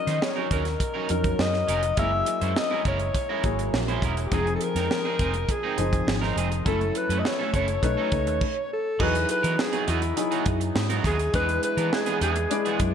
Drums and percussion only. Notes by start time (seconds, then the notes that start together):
0.07 snare, closed hi-hat
0.22 snare
0.51 kick, closed hi-hat
0.65 snare, closed hi-hat
0.80 kick, closed hi-hat
1.09 closed hi-hat
1.24 kick, closed hi-hat
1.39 snare
1.54 snare
1.69 closed hi-hat
1.83 closed hi-hat
1.97 kick, closed hi-hat
2.26 closed hi-hat
2.42 closed hi-hat
2.56 snare
2.85 kick, closed hi-hat
2.99 closed hi-hat
3.15 kick, closed hi-hat
3.44 kick, closed hi-hat
3.59 closed hi-hat
3.74 snare
3.88 closed hi-hat
4.02 kick, closed hi-hat
4.17 closed hi-hat
4.32 kick, closed hi-hat
4.47 closed hi-hat
4.61 closed hi-hat
4.76 snare, closed hi-hat
4.91 snare
5.19 kick, closed hi-hat
5.34 closed hi-hat
5.49 kick, closed hi-hat
5.78 closed hi-hat
5.93 kick, closed hi-hat
6.08 snare
6.23 snare
6.38 closed hi-hat
6.52 closed hi-hat
6.66 kick, closed hi-hat
6.81 closed hi-hat
6.95 closed hi-hat
7.10 closed hi-hat
7.25 snare
7.54 kick, closed hi-hat
7.68 closed hi-hat
7.83 kick, closed hi-hat
8.12 kick, closed hi-hat
8.27 closed hi-hat
8.41 kick, crash
9.00 kick, crash
9.15 closed hi-hat
9.29 closed hi-hat
9.44 closed hi-hat
9.59 snare
9.73 closed hi-hat
9.88 closed hi-hat
10.02 closed hi-hat
10.17 closed hi-hat
10.32 closed hi-hat
10.46 kick, closed hi-hat
10.61 closed hi-hat
10.76 snare
10.90 closed hi-hat
11.04 kick, closed hi-hat
11.19 closed hi-hat
11.34 kick, closed hi-hat
11.49 closed hi-hat
11.63 closed hi-hat
11.78 closed hi-hat
11.93 snare
12.06 closed hi-hat
12.21 closed hi-hat
12.36 closed hi-hat
12.51 closed hi-hat
12.66 closed hi-hat
12.80 kick, closed hi-hat